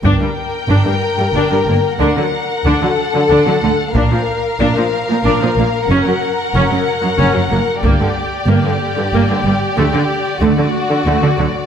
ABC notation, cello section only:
X:1
M:3/4
L:1/16
Q:1/4=93
K:Gm
V:1 name="Cello section" clef=bass
G,, G,, z2 G,, G,, z G,, G,, G,, G,, z | D, D, z2 D, D, z D, D, D, D, z | B,, B,, z2 B,, B,, z B,, B,, B,, B,, z | ^F,, F,, z2 F,, F,, z F,, F,, F,, F,, z |
G,, G,, z2 G,, G,, z G,, G,, G,, G,, z | D, D, z2 D, D, z D, D, D, D, z |]